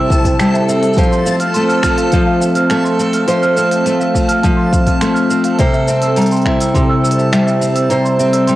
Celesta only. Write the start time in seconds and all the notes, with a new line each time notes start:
Already playing: E5 A#5 C6 E6
0.12 E6
0.26 C5
0.40 A5
0.54 E5
0.69 E5
0.82 E5
0.97 A5
1.12 C6
1.26 F5
1.40 F6
1.54 C6
1.69 F6
1.83 F6
1.98 F5
2.12 F5
2.27 F5
2.41 F5
2.56 F6
2.70 A5
2.84 C6
2.99 F5
3.14 F6
3.28 C6
3.42 F6
3.57 F6
3.71 F5
3.85 F5
4.00 F5
4.14 F5
4.29 F6
4.43 A5
4.57 C6
4.72 F5
4.87 F6
5.01 C6
5.14 F6
5.29 F6
5.45 F5
5.59 E5
5.74 E5
5.88 E5
6.03 E6
6.17 A#5
6.32 C6
6.47 E5
6.61 E6
6.75 C6
6.89 E6
7.04 E6
7.18 E5
7.32 E5
7.46 E5
7.61 E5
7.75 E6
7.90 A#5
8.05 C6
8.19 E5
8.33 E6
8.47 C6